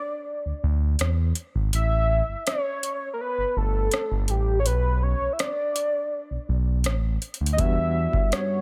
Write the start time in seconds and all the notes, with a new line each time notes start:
Already playing: D5
0.45 D2
0.63 D2
0.99 E2, cross-stick, closed hi-hat
1.35 closed hi-hat
1.55 G#1
1.73 A1 E5, closed hi-hat
2.28 G1
2.47 C#5, cross-stick, closed hi-hat
2.83 closed hi-hat
3.13 A#4
3.21 B4
3.38 G1
3.56 G1 A4
3.91 cross-stick, closed hi-hat
4.11 G1
4.28 A1 G4, closed hi-hat
4.60 C#5
4.66 B1 B4, closed hi-hat
5.03 C#5
5.21 B1
5.33 E5
5.39 D5, cross-stick, closed hi-hat
5.76 closed hi-hat
6.31 B1
6.49 B1
6.84 A1, cross-stick, closed hi-hat
7.22 closed hi-hat
7.34 closed hi-hat
7.40 D2
7.46 closed hi-hat
7.53 D#5
7.57 E2 G3 B3 D4 E5 F#5, kick, closed hi-hat
7.62 F#4
8.13 D2, kick
8.32 C#5, cross-stick, closed hi-hat